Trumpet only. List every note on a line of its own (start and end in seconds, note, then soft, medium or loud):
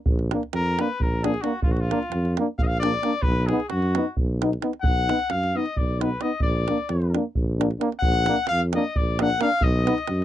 0.55 0.82 A#4 medium
0.80 1.03 B4 medium
1.02 1.25 A#4 medium
1.23 1.42 G#4 medium
1.41 1.62 F#4 medium
1.63 1.72 F4 medium
1.71 1.82 F#4 medium
1.80 2.37 F4 medium
2.58 2.64 F5 medium
2.63 2.68 D#5 medium
2.67 2.79 F5 medium
2.79 3.23 D5 medium
3.22 3.48 B4 loud
3.46 3.68 G#4 medium
3.69 4.14 F#4 medium
4.81 5.32 F#5 loud
5.30 5.57 F5 loud
5.56 5.79 D#5 medium
5.77 6.03 D5 medium
6.01 6.23 B4 medium
6.21 6.42 D#5 medium
6.42 7.12 D5 medium
7.99 8.45 F#5 loud
8.48 8.60 F5 loud
8.75 8.98 D#5 medium
8.96 9.22 D5 medium
9.21 9.41 F#5 loud
9.42 9.64 F5 loud
9.63 10.25 D#5 medium